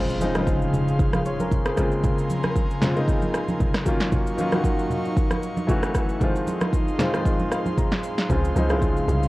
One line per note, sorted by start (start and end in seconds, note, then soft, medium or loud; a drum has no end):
0.00 0.16 C#3 medium
0.00 1.76 C#3 medium
0.00 0.16 F3 medium
0.00 0.17 G#3 medium
0.00 0.17 C4 medium
0.00 0.18 F4 medium
0.00 1.76 G#4 medium
0.00 1.76 F5 medium
0.00 3.82 C6 medium
0.00 impact medium
0.10 shaker medium
0.20 0.32 C#3 medium
0.20 0.32 F3 medium
0.20 0.33 G#3 medium
0.20 0.33 C4 medium
0.20 0.34 D#4 medium
0.20 high conga medium
0.20 shaker medium
0.34 1.18 C#3 medium
0.34 1.18 F3 medium
0.34 1.19 G#3 medium
0.34 1.00 C4 medium
0.34 1.01 F4 medium
0.34 cross-stick medium
0.34 high conga medium
0.34 shaker soft
0.47 kick loud
0.47 shaker medium
0.62 shaker soft
0.73 low conga medium
0.73 shaker medium
0.88 shaker medium
0.99 kick loud
0.99 shaker medium
1.13 1.25 G#4 medium
1.13 1.25 F5 medium
1.13 cross-stick medium
1.13 high conga medium
1.13 shaker soft
1.26 1.40 F4 medium
1.26 1.39 C#5 medium
1.26 shaker medium
1.40 1.65 C#4 medium
1.40 1.65 A#4 medium
1.40 high conga medium
1.40 shaker medium
1.51 kick medium
1.51 low conga medium
1.51 shaker medium
1.65 1.78 C4 medium
1.65 1.91 G#4 medium
1.65 cross-stick loud
1.65 shaker medium
1.76 2.61 C#3 medium
1.76 3.84 C#3 medium
1.76 2.61 G#3 medium
1.76 2.62 A#3 medium
1.76 2.62 C4 medium
1.76 2.63 F4 medium
1.76 3.84 A#4 medium
1.76 3.84 G#5 medium
1.76 kick medium
1.76 cross-stick medium
1.76 shaker loud
1.92 shaker soft
2.03 kick loud
2.03 low conga medium
2.03 shaker medium
2.18 shaker medium
2.30 high conga medium
2.30 shaker medium
2.43 cross-stick medium
2.43 high conga medium
2.43 shaker soft
2.56 kick loud
2.56 shaker medium
2.71 shaker soft
2.81 2.93 C#3 medium
2.81 2.93 G#3 medium
2.81 2.94 A#3 medium
2.81 2.94 C4 medium
2.81 2.95 F4 loud
2.81 snare medium
2.81 low conga medium
2.81 shaker medium
2.95 3.78 C#3 medium
2.95 3.79 G#3 medium
2.95 3.79 A#3 medium
2.95 3.80 C4 medium
2.95 3.80 D#4 medium
2.95 shaker medium
3.08 kick loud
3.08 shaker medium
3.22 high conga medium
3.22 shaker soft
3.34 cross-stick medium
3.34 shaker medium
3.48 high conga medium
3.48 shaker medium
3.60 kick medium
3.60 low conga medium
3.60 shaker medium
3.74 cross-stick medium
3.74 snare medium
3.74 shaker medium
3.85 4.28 D#3 medium
3.85 4.29 F#3 medium
3.85 5.67 F#3 medium
3.85 4.29 A#3 medium
3.85 4.30 C#4 medium
3.85 5.67 D#4 medium
3.85 4.30 F4 loud
3.85 5.67 F5 medium
3.85 6.19 C#6 medium
3.85 kick loud
3.85 shaker loud
4.00 snare medium
4.00 shaker soft
4.12 kick loud
4.12 low conga medium
4.12 shaker medium
4.27 shaker medium
4.37 4.49 D#3 medium
4.37 4.50 F#3 medium
4.37 4.50 A#3 medium
4.37 4.51 C#4 medium
4.37 4.51 F4 medium
4.37 high conga medium
4.37 shaker medium
4.51 5.35 D#3 medium
4.51 5.35 F#3 medium
4.51 5.36 A#3 medium
4.51 5.36 C#4 medium
4.51 5.37 F#4 medium
4.51 cross-stick medium
4.51 high conga medium
4.51 shaker soft
4.64 kick loud
4.64 shaker medium
4.79 shaker medium
4.90 low conga medium
4.90 shaker medium
5.05 shaker medium
5.17 kick loud
5.17 shaker medium
5.31 cross-stick medium
5.31 high conga medium
5.31 shaker soft
5.43 shaker medium
5.57 high conga medium
5.57 shaker medium
5.67 6.11 E3 medium
5.67 6.11 F#3 medium
5.67 6.12 A3 medium
5.67 6.12 C#4 medium
5.67 6.21 E4 medium
5.67 6.13 F#4 loud
5.67 6.21 A4 medium
5.67 6.21 F#5 medium
5.67 kick loud
5.67 low conga medium
5.67 shaker medium
5.83 cross-stick medium
5.83 shaker medium
5.95 kick medium
5.95 cross-stick medium
5.95 shaker loud
6.09 shaker soft
6.20 6.84 D#3 medium
6.20 6.84 F3 medium
6.20 6.85 G#3 medium
6.20 6.85 C4 medium
6.20 8.28 D#4 medium
6.20 6.86 F4 medium
6.20 9.28 G#4 medium
6.20 9.28 F5 medium
6.20 9.28 C6 medium
6.20 kick loud
6.20 low conga medium
6.20 shaker medium
6.36 shaker medium
6.47 high conga medium
6.47 shaker medium
6.61 cross-stick medium
6.61 high conga medium
6.61 shaker soft
6.73 kick loud
6.73 shaker medium
6.88 shaker soft
6.98 7.10 D#3 medium
6.98 7.11 F3 medium
6.98 7.11 G#3 medium
6.98 7.12 C4 medium
6.98 7.12 F4 medium
6.98 snare medium
6.98 low conga medium
6.98 shaker medium
7.12 7.96 D#3 medium
7.12 7.96 F3 medium
7.12 7.97 G#3 medium
7.12 7.97 C4 medium
7.12 7.98 F4 medium
7.12 cross-stick medium
7.12 high conga medium
7.12 shaker medium
7.25 kick loud
7.25 shaker medium
7.40 high conga medium
7.40 shaker soft
7.52 7.76 F5 medium
7.52 cross-stick medium
7.52 shaker medium
7.66 high conga medium
7.66 shaker medium
7.77 8.26 A#5 medium
7.77 kick medium
7.77 low conga medium
7.77 shaker medium
7.92 snare medium
7.92 shaker medium
8.03 shaker loud
8.18 snare medium
8.18 shaker soft
8.28 8.52 C#2 loud
8.28 8.50 C#3 medium
8.28 9.28 C#3 medium
8.28 8.51 F3 medium
8.28 8.51 G#3 medium
8.28 8.52 C4 medium
8.28 8.52 F4 medium
8.28 kick loud
8.28 low conga medium
8.28 shaker medium
8.44 shaker medium
8.54 9.01 C#2 loud
8.54 8.67 C#3 medium
8.54 8.67 F3 medium
8.54 8.68 G#3 medium
8.54 8.68 C4 medium
8.54 8.68 D#4 medium
8.54 high conga medium
8.54 shaker medium
8.69 9.28 C#3 medium
8.69 9.28 F3 medium
8.69 9.28 G#3 medium
8.69 9.28 C4 medium
8.69 8.77 E4 medium
8.69 cross-stick medium
8.69 high conga medium
8.69 shaker soft
8.79 9.28 F4 medium
8.79 kick loud
8.79 shaker medium
8.97 shaker soft
9.08 9.28 C2 medium
9.08 low conga medium
9.08 shaker medium
9.23 shaker medium